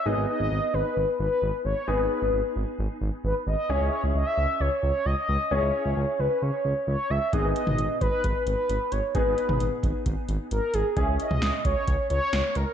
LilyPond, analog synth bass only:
\new Staff \with { instrumentName = "Analog synth bass" } { \clef bass \time 4/4 \key gis \minor \tempo 4 = 132 gis,,16 gis,,16 r16 gis,,16 gis,,16 r16 gis,,16 r16 gis,,16 r16 gis,,16 r16 gis,,16 r16 gis,,16 r16 | gis,,16 gis,,16 r16 gis,,16 gis,,16 r16 gis,,16 r16 gis,,16 r16 gis,,16 r16 gis,,16 r16 gis,,16 r16 | cis,16 cis,16 r16 cis,16 cis,16 r16 cis,16 r16 cis,16 r16 cis,16 r16 cis,16 r16 cis,16 r16 | cis,16 cis,16 r16 cis,16 cis,16 r16 cis,16 r16 cis,16 r16 cis,16 r16 cis,16 r16 cis,16 r16 |
gis,,16 gis,,16 r16 gis,,16 gis,,16 r16 gis,,16 r16 gis,,16 r16 gis,,16 r16 gis,,16 r16 gis,,16 r16 | gis,,16 gis,,16 r16 gis,,16 gis,,16 r16 gis,,16 r16 gis,,16 r16 gis,,16 r16 gis,,16 r16 gis,,16 r16 | cis,16 cis,16 r16 cis,16 cis,16 r16 cis,16 r16 cis,16 r16 cis,16 r16 cis,16 r16 cis,16 r16 | }